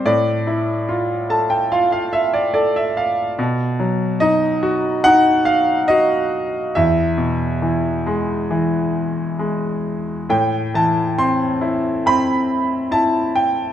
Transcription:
0.06 3.34 A2 medium
0.06 1.67 D5 medium
0.47 2.09 E4 soft
0.89 1.70 F4 soft
1.30 2.52 A4 soft
1.30 1.49 A5 medium
1.50 1.70 G5 medium
1.72 3.35 F4 soft
1.72 1.91 F5 medium
1.92 2.12 F5 medium
2.13 2.32 E5 medium
2.34 2.52 D5 medium
2.54 3.35 A4 soft
2.54 2.74 D5 medium
2.76 2.95 E5 medium
2.97 3.36 F5 medium
3.39 6.71 B2 medium
3.80 5.43 F#3 soft
4.20 5.04 D#4 soft
4.20 5.07 D#5 medium
4.63 5.88 F#4 soft
5.04 6.72 D#4 medium
5.04 5.48 F#5 loud
5.45 5.86 F5 medium
5.88 6.73 F#4 soft
5.88 6.77 D#5 medium
6.75 10.27 E2 medium
6.75 8.46 E5 medium
7.17 8.91 B2 soft
7.62 8.49 E3 soft
8.07 9.38 G#3 soft
8.51 10.26 E3 soft
9.39 10.27 G#3 soft
10.30 13.72 A2 soft
10.30 10.76 G5 medium
10.74 12.45 E3 soft
10.74 11.20 A5 medium
11.18 12.05 C4 soft
11.18 12.02 C6 medium
11.61 12.90 E4 soft
12.06 13.73 C4 soft
12.06 12.95 B5 medium
12.91 13.73 E4 soft
12.91 13.36 A5 medium
13.35 13.73 G5 medium

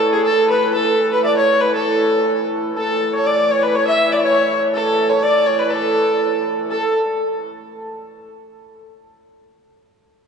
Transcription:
0.00 2.75 A2 medium
0.00 2.75 E3 medium
0.00 0.11 A4 loud
0.00 0.11 A4 medium
0.00 0.19 A4 medium
0.00 0.51 B4 medium
0.00 1.30 C#5 loud
0.13 0.33 G#4 medium
0.13 0.24 G#4 medium
0.13 0.26 G#4 medium
0.25 0.49 A4 loud
0.25 0.49 A4 medium
0.25 0.75 A4 loud
0.50 0.74 B4 medium
0.50 0.77 B4 medium
0.50 1.15 B4 medium
0.74 1.10 A4 medium
0.74 1.77 A4 medium
1.11 1.24 B4 medium
1.11 1.23 B4 medium
1.11 1.64 B4 medium
1.23 1.45 D5 loud
1.23 1.36 D5 loud
1.23 1.39 D5 medium
1.23 1.26 E5 medium
1.37 1.62 C#5 loud
1.37 1.69 C#5 medium
1.37 3.13 C#5 medium
1.61 1.74 B4 medium
1.61 3.61 B4 medium
1.69 1.76 B4 medium
1.75 2.46 A4 medium
1.75 2.47 A4 medium
1.75 2.76 A4 medium
2.75 6.77 A2 medium
2.75 6.77 E3 medium
2.75 3.14 A4 medium
2.75 4.73 A4 medium
2.75 3.11 A4 medium
3.12 3.18 C#5 medium
3.12 3.32 C#5 medium
3.12 3.28 C#5 loud
3.26 3.51 D5 loud
3.26 3.81 D5 medium
3.26 3.53 D5 loud
3.49 3.62 C#5 medium
3.49 3.64 C#5 medium
3.62 3.75 B4 medium
3.62 5.60 B4 medium
3.62 3.77 B4 medium
3.74 3.87 C#5 loud
3.74 4.18 C#5 loud
3.74 3.87 C#5 loud
3.85 6.15 E5 medium
3.85 4.10 E5 medium
3.85 4.14 E5 loud
4.11 4.23 D5 medium
4.11 4.22 D5 medium
4.11 4.29 D5 medium
4.23 4.58 C#5 medium
4.23 4.58 C#5 loud
4.23 5.12 C#5 medium
4.73 5.08 A4 medium
4.73 5.73 A4 medium
4.73 5.11 A4 loud
5.09 5.24 C#5 medium
5.09 5.22 C#5 medium
5.09 5.28 C#5 medium
5.22 5.55 D5 loud
5.22 5.47 D5 loud
5.22 5.62 D5 loud
5.46 5.60 C#5 medium
5.46 8.04 C#5 medium
5.59 5.72 B4 medium
5.59 5.73 B4 medium
5.59 8.34 B4 medium
5.71 6.46 A4 medium
5.71 6.43 A4 medium
6.70 6.94 A4 medium
6.70 6.95 A4 loud

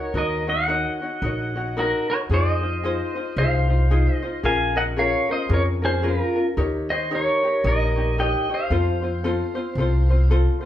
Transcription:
0.00 0.14 D#4 soft
0.00 0.14 F#4 soft
0.00 0.13 A#4 medium
0.00 0.14 C#5 soft
0.00 0.18 C#5 medium
0.14 0.84 D#2 medium
0.14 0.47 D#4 medium
0.14 0.47 F#4 medium
0.14 0.47 A#4 medium
0.14 0.46 A#4 medium
0.14 0.46 C#5 medium
0.18 0.48 D#5 medium
0.47 0.68 D#4 soft
0.47 0.68 F#4 soft
0.47 0.68 C#5 medium
0.47 1.73 D#5 medium
0.47 1.81 F#5 medium
0.68 1.01 D#4 medium
0.68 1.01 F#4 medium
0.68 1.01 A#4 medium
0.68 1.00 C#5 medium
1.01 1.22 D#4 soft
1.01 1.23 F#4 soft
1.01 1.23 C#5 soft
1.22 1.92 A#1 medium
1.22 1.55 D#4 medium
1.22 1.56 F#4 medium
1.22 1.55 A#4 medium
1.22 1.54 C#5 medium
1.56 1.76 D#4 soft
1.56 1.77 F#4 medium
1.56 1.77 C#5 soft
1.77 2.09 D#4 medium
1.77 2.09 F#4 medium
1.77 2.08 F#4 medium
1.77 2.09 A#4 medium
1.77 2.08 C#5 medium
2.10 2.31 D#4 soft
2.10 2.31 F#4 soft
2.10 2.15 A#4 medium
2.10 2.30 C#5 soft
2.10 2.17 C#5 medium
2.29 2.99 F2 medium
2.29 2.62 D#4 medium
2.29 2.62 F4 medium
2.29 2.62 G#4 medium
2.29 2.60 C5 medium
2.34 3.35 C5 medium
2.34 3.42 D#5 medium
2.61 2.83 D#4 soft
2.61 2.83 F4 soft
2.61 2.83 C5 soft
2.84 3.16 D#4 medium
2.84 3.16 F4 medium
2.84 3.16 G#4 medium
2.84 3.14 C5 medium
3.15 3.38 D#4 soft
3.15 3.37 F4 medium
3.15 3.37 C5 medium
3.37 4.06 C2 medium
3.37 3.69 D#4 medium
3.37 3.69 F4 medium
3.37 3.70 G#4 medium
3.37 4.40 C5 medium
3.37 3.67 C5 medium
3.37 4.15 F5 medium
3.69 3.90 D#4 soft
3.69 3.90 F4 soft
3.69 3.90 C5 soft
3.91 4.23 D#4 medium
3.91 4.23 F4 medium
3.91 4.22 G#4 medium
3.91 4.21 C5 medium
4.15 4.44 D#5 medium
4.22 4.44 D#4 soft
4.22 4.43 F4 soft
4.22 4.44 C5 medium
4.43 5.13 A#1 medium
4.43 4.76 C#4 medium
4.43 4.76 F4 medium
4.43 4.76 G#4 medium
4.43 4.74 A#4 medium
4.43 4.74 F5 medium
4.43 4.78 G#5 medium
4.75 4.96 C#4 soft
4.75 4.96 F4 soft
4.75 4.97 A#4 soft
4.75 4.82 D#5 medium
4.75 4.83 F#5 medium
4.96 5.29 C#4 medium
4.96 5.29 F4 medium
4.96 5.29 G#4 medium
4.96 5.28 A#4 medium
4.96 5.28 C#5 medium
4.96 5.31 F5 loud
5.29 5.48 C#4 soft
5.29 5.49 F4 soft
5.29 5.50 A#4 soft
5.29 5.50 C5 medium
5.29 5.53 D#5 medium
5.49 6.19 F2 loud
5.49 5.82 C#4 medium
5.49 5.81 F4 medium
5.49 5.82 G#4 medium
5.49 5.81 A#4 medium
5.53 5.62 A#4 medium
5.53 5.62 C#5 medium
5.82 6.02 C#4 soft
5.82 6.02 F4 soft
5.82 6.03 G#4 medium
5.82 6.02 A#4 soft
5.82 6.06 C5 medium
6.02 6.35 C#4 medium
6.02 6.35 F4 medium
6.02 6.35 G#4 medium
6.02 6.34 A#4 medium
6.08 6.46 F4 medium
6.08 6.46 A#4 medium
6.36 6.57 C#4 soft
6.36 6.57 F4 soft
6.36 6.56 A#4 soft
6.57 7.26 D#2 medium
6.57 6.89 D#4 medium
6.57 6.89 G4 medium
6.57 6.89 A#4 medium
6.57 6.89 C#5 medium
6.90 7.10 D#4 soft
6.90 7.10 G4 soft
6.90 7.10 C5 medium
6.90 7.10 C#5 soft
6.90 7.12 D#5 medium
7.11 7.43 D#4 medium
7.11 7.43 G4 medium
7.11 7.43 A#4 medium
7.11 7.42 C#5 medium
7.15 7.63 A#4 medium
7.15 7.68 C#5 medium
7.44 7.63 D#4 soft
7.44 7.64 G4 soft
7.44 7.64 C#5 medium
7.64 8.33 A#1 medium
7.64 7.96 D#4 medium
7.64 7.96 G4 medium
7.64 7.96 A#4 medium
7.64 7.95 C#5 medium
7.64 8.20 D#5 medium
7.68 8.16 A#4 medium
7.96 8.18 D#4 soft
7.96 8.18 G4 soft
7.96 8.17 C#5 medium
8.18 8.50 D#4 medium
8.18 8.49 G4 medium
8.18 8.50 A#4 medium
8.18 8.48 C#5 medium
8.18 8.49 D#5 medium
8.18 8.51 G5 loud
8.50 8.71 D#4 soft
8.50 8.71 G4 soft
8.50 8.70 C#5 soft
8.54 10.28 C5 medium
8.54 10.29 F5 medium
8.70 9.39 F2 medium
8.70 9.03 C4 medium
8.70 9.02 F4 medium
8.70 9.02 A4 medium
8.70 9.01 C5 medium
9.02 9.23 C4 soft
9.02 9.24 F4 soft
9.02 9.23 C5 soft
9.24 9.56 C4 medium
9.24 9.55 F4 medium
9.24 9.56 A4 medium
9.24 9.54 C5 medium
9.55 9.77 C4 soft
9.55 9.77 F4 medium
9.55 9.76 C5 medium
9.75 10.45 C2 medium
9.75 10.09 C4 medium
9.75 10.10 F4 medium
9.75 10.09 A4 medium
9.80 10.09 C5 medium
10.10 10.30 C4 soft
10.10 10.30 F4 soft
10.10 10.30 C5 soft
10.31 10.62 C4 medium
10.31 10.61 F4 medium
10.31 10.62 A4 medium
10.31 10.60 C5 medium
10.61 10.65 F4 soft
10.61 10.65 C5 soft

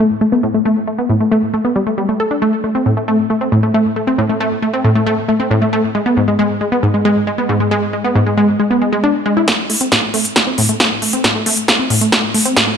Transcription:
0.21 0.25 A3 medium
0.32 0.43 B3 medium
0.43 0.47 A2 loud
0.54 0.61 A3 medium
0.65 0.76 A3 loud
0.88 0.92 A3 medium
0.98 1.09 B3 medium
1.10 1.14 A2 loud
1.21 1.27 A3 medium
1.32 1.42 A3 loud
1.54 1.58 A3 medium
1.65 1.75 B3 medium
1.76 1.80 G3 medium
1.87 1.94 A3 medium
1.98 2.08 G3 medium
2.09 2.19 A3 medium
2.20 2.27 A4 medium
2.31 2.35 D4 medium
2.42 2.52 A3 loud
2.64 2.68 A3 medium
2.75 2.85 C4 medium
2.86 2.90 A2 medium
2.97 3.04 A3 medium
3.08 3.18 A3 medium
3.30 3.34 A3 medium
3.41 3.52 C4 medium
3.52 3.56 A2 loud
3.63 3.70 A3 medium
3.74 3.85 A3 loud
3.96 4.00 A3 medium
4.07 4.18 C4 medium
4.18 4.23 A2 loud
4.29 4.36 A3 medium
4.40 4.51 A3 loud
4.62 4.67 A3 medium
4.73 4.84 C4 medium
4.84 4.89 A2 loud
4.95 5.02 A3 medium
5.07 5.17 A3 loud
5.29 5.33 A3 medium
5.40 5.50 C4 medium
5.51 5.55 A2 loud
5.62 5.69 A3 medium
5.73 5.83 A3 loud
5.95 5.99 G#3 medium
6.06 6.16 B3 medium
6.17 6.21 G#2 medium
6.28 6.35 G#3 medium
6.39 6.49 G#3 loud
6.61 6.65 G#3 medium
6.72 6.82 B3 medium
6.83 6.87 G#2 loud
6.94 7.01 G#3 medium
7.05 7.15 G#3 loud
7.27 7.31 G#3 medium
7.38 7.49 B3 medium
7.49 7.53 G#2 loud
7.60 7.67 G#3 medium
7.71 7.82 G#3 loud
7.93 7.97 G#3 medium
8.04 8.15 B3 medium
8.15 8.20 G#2 loud
8.26 8.33 G#3 medium
8.37 8.48 G#3 medium
8.60 8.64 G#3 medium
8.71 8.81 B3 medium
8.82 8.91 G#3 medium
8.93 8.97 G#3 loud
9.04 9.11 D4 loud
9.26 9.33 G#3 loud
9.37 9.44 E4 medium
9.48 9.58 A3 loud
9.48 kick loud
9.48 snare soft
9.48 closed hi-hat medium
9.70 9.74 A3 medium
9.70 open hi-hat loud
9.81 9.91 C4 medium
9.81 closed hi-hat medium
9.92 9.96 A2 loud
9.92 kick loud
9.92 snare soft
9.92 closed hi-hat medium
10.03 10.10 A3 medium
10.14 10.24 A3 loud
10.14 open hi-hat medium
10.25 closed hi-hat medium
10.36 10.40 A3 medium
10.36 kick loud
10.36 snare soft
10.36 closed hi-hat medium
10.47 10.57 C4 medium
10.58 10.62 A2 loud
10.58 open hi-hat loud
10.69 10.76 A3 medium
10.69 closed hi-hat medium
10.80 10.91 A3 loud
10.80 kick loud
10.80 snare soft
10.80 closed hi-hat medium
11.02 11.06 A3 medium
11.02 open hi-hat medium
11.13 11.24 C4 medium
11.13 closed hi-hat medium
11.24 11.28 A2 loud
11.24 kick loud
11.24 snare soft
11.24 closed hi-hat medium
11.35 11.42 A3 medium
11.46 11.57 A3 loud
11.46 open hi-hat loud
11.57 closed hi-hat medium
11.68 11.72 A3 medium
11.68 kick loud
11.68 snare medium
11.68 closed hi-hat medium
11.79 11.90 C4 medium
11.90 11.95 A2 loud
11.90 open hi-hat medium
12.01 12.08 A3 medium
12.01 closed hi-hat medium
12.12 12.23 A3 loud
12.12 kick loud
12.12 snare medium
12.12 closed hi-hat medium
12.34 12.39 A3 medium
12.34 open hi-hat loud
12.45 12.56 C4 medium
12.45 closed hi-hat medium
12.56 12.61 A2 loud
12.56 kick loud
12.56 snare medium
12.56 closed hi-hat medium
12.68 12.75 A3 medium

